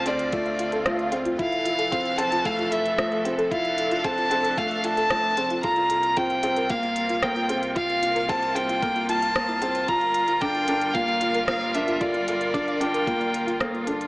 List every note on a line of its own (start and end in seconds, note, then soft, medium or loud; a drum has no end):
0.00 1.37 D2 medium
0.00 1.35 D3 medium
0.00 1.35 C4 medium
0.00 1.35 F4 medium
0.06 0.28 C4 medium
0.06 0.10 A4 medium
0.06 1.13 D5 medium
0.06 closed hi-hat medium
0.19 closed hi-hat soft
0.32 0.77 A3 medium
0.32 0.42 F4 loud
0.32 kick loud
0.32 closed hi-hat soft
0.32 swell medium
0.46 0.55 F5 medium
0.46 closed hi-hat soft
0.59 0.65 F4 medium
0.59 closed hi-hat medium
0.72 0.76 A4 loud
0.72 closed hi-hat soft
0.85 1.08 A3 medium
0.85 0.89 F4 medium
0.85 kick loud
0.85 cross-stick medium
0.85 closed hi-hat soft
0.99 closed hi-hat soft
1.12 1.34 C4 medium
1.12 closed hi-hat medium
1.25 1.29 F4 medium
1.25 closed hi-hat soft
1.39 5.61 F1 medium
1.39 3.49 E3 medium
1.39 5.60 F3 medium
1.39 1.83 E4 medium
1.39 1.48 F4 loud
1.39 5.60 A4 medium
1.39 2.20 F5 loud
1.39 kick loud
1.39 closed hi-hat soft
1.52 1.61 F5 medium
1.52 closed hi-hat soft
1.65 1.72 F4 medium
1.65 closed hi-hat medium
1.79 1.82 A4 loud
1.79 closed hi-hat soft
1.92 2.14 C4 medium
1.92 1.96 F4 loud
1.92 kick loud
1.92 closed hi-hat soft
2.05 closed hi-hat soft
2.18 2.41 C4 medium
2.18 2.47 A5 loud
2.18 closed hi-hat medium
2.32 2.36 F4 medium
2.32 closed hi-hat soft
2.45 2.89 A3 medium
2.45 2.51 A4 loud
2.45 2.73 F5 loud
2.45 kick loud
2.45 closed hi-hat soft
2.59 2.65 F4 medium
2.59 closed hi-hat soft
2.72 2.76 A4 medium
2.72 3.25 E5 medium
2.72 closed hi-hat medium
2.86 closed hi-hat soft
2.98 3.20 A3 medium
2.98 3.07 F4 loud
2.98 kick loud
2.98 cross-stick medium
2.98 closed hi-hat soft
3.12 3.21 F5 medium
3.12 closed hi-hat soft
3.25 3.47 C4 medium
3.25 3.31 F4 medium
3.25 closed hi-hat medium
3.38 3.42 A4 loud
3.38 closed hi-hat soft
3.51 5.62 D4 medium
3.51 3.95 E4 loud
3.51 3.55 F4 loud
3.51 4.06 F5 loud
3.51 kick loud
3.51 closed hi-hat soft
3.65 closed hi-hat soft
3.78 closed hi-hat medium
3.91 3.95 F4 medium
3.91 closed hi-hat soft
4.04 4.26 C4 medium
4.04 4.11 A4 medium
4.04 4.60 A5 loud
4.04 kick loud
4.04 closed hi-hat soft
4.18 4.24 F4 medium
4.18 closed hi-hat soft
4.31 4.53 C4 medium
4.31 4.35 A4 medium
4.31 closed hi-hat medium
4.45 closed hi-hat soft
4.57 5.02 A3 medium
4.57 4.67 F4 loud
4.57 4.86 F5 loud
4.57 kick loud
4.57 closed hi-hat soft
4.71 4.80 F5 medium
4.71 closed hi-hat soft
4.84 4.90 F4 medium
4.84 5.63 A5 loud
4.84 closed hi-hat medium
4.97 5.01 A4 loud
4.97 closed hi-hat soft
5.10 5.33 A3 medium
5.10 5.14 F4 medium
5.10 kick loud
5.10 cross-stick medium
5.10 closed hi-hat soft
5.24 closed hi-hat soft
5.37 5.59 C4 medium
5.37 closed hi-hat medium
5.50 5.54 F4 medium
5.50 closed hi-hat soft
5.63 9.86 C2 medium
5.63 9.85 C3 medium
5.63 9.85 A#3 medium
5.63 14.07 F4 medium
5.63 6.08 F4 medium
5.63 5.70 A4 loud
5.63 6.18 A#5 loud
5.63 kick loud
5.63 closed hi-hat soft
5.76 5.83 F4 medium
5.76 closed hi-hat soft
5.90 5.94 A4 medium
5.90 closed hi-hat medium
6.03 closed hi-hat soft
6.17 6.39 C4 medium
6.17 6.26 F4 loud
6.17 6.72 G5 loud
6.17 kick loud
6.17 closed hi-hat soft
6.30 6.39 F5 medium
6.30 closed hi-hat soft
6.43 6.66 C4 medium
6.43 6.49 F4 medium
6.43 closed hi-hat medium
6.56 6.60 A#4 loud
6.56 closed hi-hat soft
6.70 7.14 A#3 medium
6.70 6.74 F4 loud
6.70 7.25 F5 loud
6.70 kick loud
6.70 closed hi-hat soft
6.83 closed hi-hat soft
6.96 closed hi-hat medium
7.09 7.13 F4 medium
7.09 closed hi-hat soft
7.23 7.45 A#3 medium
7.23 7.29 A4 medium
7.23 7.63 G5 loud
7.23 kick loud
7.23 cross-stick medium
7.23 closed hi-hat soft
7.36 7.42 F4 medium
7.36 closed hi-hat soft
7.49 7.72 C4 medium
7.49 7.53 A4 medium
7.49 closed hi-hat medium
7.63 closed hi-hat soft
7.76 8.20 F4 loud
7.76 7.85 F4 loud
7.76 8.31 F5 loud
7.76 kick loud
7.76 closed hi-hat soft
7.89 7.99 F5 medium
7.89 closed hi-hat soft
8.03 8.09 F4 medium
8.03 closed hi-hat medium
8.15 8.19 A#4 loud
8.15 closed hi-hat soft
8.29 8.51 C4 medium
8.29 8.33 F4 loud
8.29 8.57 A5 loud
8.29 kick loud
8.29 closed hi-hat soft
8.43 closed hi-hat soft
8.55 8.78 C4 medium
8.55 9.08 G5 loud
8.55 closed hi-hat medium
8.69 8.73 F4 medium
8.69 closed hi-hat soft
8.82 9.26 A#3 medium
8.82 8.88 A4 loud
8.82 kick loud
8.82 closed hi-hat soft
8.95 9.02 F4 medium
8.95 closed hi-hat soft
9.09 9.18 F4 loud
9.09 9.90 A5 loud
9.09 closed hi-hat medium
9.22 9.28 F5 loud
9.22 closed hi-hat soft
9.36 9.58 A#3 medium
9.36 kick loud
9.36 cross-stick medium
9.36 closed hi-hat soft
9.49 9.52 E4 medium
9.49 closed hi-hat soft
9.62 9.84 C4 medium
9.62 closed hi-hat medium
9.75 9.84 C5 medium
9.75 closed hi-hat soft
9.88 14.07 G1 medium
9.88 14.07 G3 medium
9.88 10.33 F4 medium
9.88 9.92 F4 loud
9.88 14.07 A#4 medium
9.88 10.43 A#5 loud
9.88 kick loud
9.88 closed hi-hat soft
10.01 closed hi-hat soft
10.14 closed hi-hat medium
10.28 10.32 F4 medium
10.28 closed hi-hat soft
10.41 10.64 D4 medium
10.41 10.48 A4 loud
10.41 10.95 G5 loud
10.41 kick loud
10.41 closed hi-hat soft
10.55 10.61 F4 medium
10.55 closed hi-hat soft
10.68 10.90 D4 medium
10.68 10.72 A4 medium
10.68 closed hi-hat medium
10.81 closed hi-hat soft
10.94 11.39 A#3 medium
10.94 11.04 F4 loud
10.94 11.47 F5 loud
10.94 kick loud
10.94 closed hi-hat soft
11.08 11.17 F5 medium
11.08 closed hi-hat soft
11.21 11.28 F4 medium
11.21 closed hi-hat medium
11.34 11.38 A#4 loud
11.34 closed hi-hat soft
11.48 11.70 A#3 medium
11.48 11.52 F4 medium
11.48 11.76 F5 medium
11.48 kick loud
11.48 cross-stick medium
11.48 closed hi-hat soft
11.61 closed hi-hat soft
11.74 11.97 D4 medium
11.74 12.02 E5 medium
11.74 closed hi-hat medium
11.88 11.92 F4 medium
11.88 closed hi-hat soft
12.01 12.45 F4 loud
12.01 12.07 A4 loud
12.01 12.82 D5 medium
12.01 kick loud
12.01 closed hi-hat soft
12.14 12.20 F4 medium
12.14 closed hi-hat soft
12.28 12.31 A4 medium
12.28 closed hi-hat medium
12.41 closed hi-hat soft
12.54 12.76 D4 medium
12.54 12.63 F4 loud
12.54 kick loud
12.54 closed hi-hat soft
12.67 12.76 F5 medium
12.67 closed hi-hat soft
12.81 13.03 D4 medium
12.81 12.87 F4 medium
12.81 13.60 G5 medium
12.81 closed hi-hat medium
12.94 12.98 A#4 loud
12.94 closed hi-hat soft
13.07 13.51 A#3 medium
13.07 13.11 F4 loud
13.07 kick loud
13.07 closed hi-hat soft
13.21 closed hi-hat soft
13.34 closed hi-hat medium
13.47 13.51 F4 medium
13.47 closed hi-hat soft
13.60 13.82 A#3 medium
13.60 13.66 A4 loud
13.60 kick loud
13.60 cross-stick medium
13.60 closed hi-hat soft
13.74 13.80 F4 medium
13.74 closed hi-hat soft
13.87 14.07 D4 medium
13.87 13.91 A4 medium
13.87 closed hi-hat medium
14.01 closed hi-hat soft